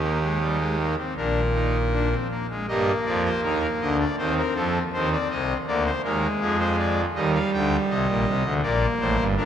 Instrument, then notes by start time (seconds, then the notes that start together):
pipe organ
Already playing: D#2 D#3 G4
0.02 A#3
0.22 G#3
0.41 G3
0.60 G#3
0.78 A#3
0.97 C4
1.16 A#1 A#2 D4 A#4
1.54 D#4
1.92 D4
2.10 C4
2.30 A#3
2.50 G#3
2.68 G2 G3 A#3 D#5
3.05 F2 F3 D5
3.25 C5
3.43 D#2 D#3 A#4
3.81 D2 D3 D#5
3.99 D5
4.18 D#2 D#3 C4 C5
4.38 A#4
4.55 F2 F3 A4
4.93 D#2 D#3 C4 C5
5.12 D5
5.30 C2 C3 D#5
5.67 D2 D3 A#3 D5
5.86 C5
6.03 D#2 D#3 G#3 A#4
6.41 F2 F3 G#4
6.59 C5
6.79 D5
7.15 D#2 D#3 G3 D#5
7.34 F5
7.53 D2 D3 G5
7.90 C2 C3 D#5
8.09 A#1 A#2
8.27 C2 C3
8.44 D2 D3
8.62 A#1 A#2 A#3 D5
9.00 A1 A2 C5
9.18 G1 G2
9.36 F1 F2 D4 A#4